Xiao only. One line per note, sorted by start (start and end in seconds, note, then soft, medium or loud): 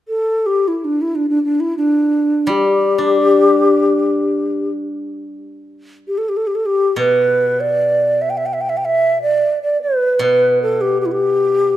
0.08 0.48 A4 medium
0.46 0.69 G4 medium
0.68 0.86 E4 medium
0.85 1.03 D4 medium
1.02 1.17 E4 medium
1.15 1.29 D4 medium
1.29 1.42 D4 medium
1.44 1.62 D4 medium
1.60 1.77 E4 medium
1.77 2.51 D4 medium
2.50 4.71 G4 medium
6.08 6.19 G4 medium
6.18 6.30 A4 medium
6.29 6.38 G4 medium
6.37 6.49 A4 medium
6.47 6.57 G4 medium
6.55 6.67 A4 medium
6.66 6.98 G4 medium
6.99 7.62 B4 medium
7.60 8.23 D5 medium
8.21 8.31 E5 medium
8.30 8.39 G5 medium
8.37 8.47 E5 medium
8.46 8.55 G5 medium
8.53 8.62 E5 medium
8.61 8.71 G5 medium
8.69 8.79 E5 medium
8.77 8.87 G5 medium
8.86 9.21 E5 medium
9.22 9.59 D5 medium
9.62 9.81 D5 medium
9.82 10.19 B4 medium
10.23 10.59 B4 medium
10.63 10.83 A4 medium
10.81 11.00 G4 medium
11.01 11.07 G4 medium
11.06 11.14 E4 medium
11.12 11.77 G4 medium